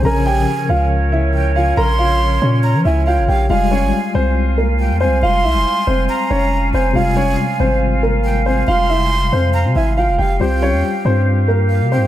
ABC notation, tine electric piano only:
X:1
M:4/4
L:1/8
Q:1/4=139
K:Fm
V:1 name="Tine electric piano" clef=bass
[D,F,DB]8- | [D,F,DB]8 | [G,A,F]8- | [G,A,F]8 |
[C,G,A,F]8- | [C,G,A,F]8 | [G,FG]8 |]